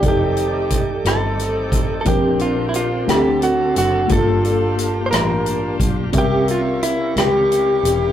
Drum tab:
HH |xxxxxx|xxxxxx|xxxxxx|xxxxxx|
SD |---r--|---r--|---r--|---r--|
BD |o-o--o|o-----|o----o|o-----|